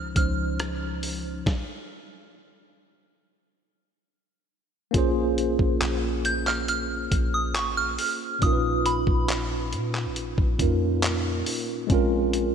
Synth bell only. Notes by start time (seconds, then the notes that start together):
0.17 F6
6.26 G6
6.47 F6
6.69 F6
7.34 D#6
7.56 C#6
7.77 F6
8.43 D#6
8.86 B5